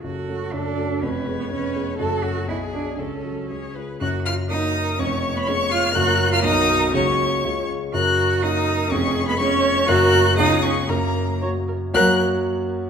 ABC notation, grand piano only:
X:1
M:2/4
L:1/8
Q:1/4=122
K:F#m
V:1 name="Grand piano"
[F,,,F,,] [A,CF] [F,,,F,,] [A,CF] | [^E,,,^E,,] [B,CG] [E,,,E,,] [B,CG] | [F,,,F,,] [A,CF] [B,,,B,,] [G,DG] | [C,,C,] [F,FA] [C,,C,] [G,^EG] |
[K:F#] [F,,,F,,]2 [A,CF]2 | [E,,,E,,]2 [B,CG]2 | [F,,,F,,A,CF]2 [B,,,B,,F,B,F]2 | [C,,C,F,A,F]2 [C,,C,G,CE]2 |
[F,,,F,,]2 [A,CF]2 | [E,,,E,,]2 [B,CG]2 | [F,,,F,,A,CF]2 [C,,C,B,CE]2 | [F,,,F,,]2 [A,CF]2 |
[F,,F,A,CFc] z3 |]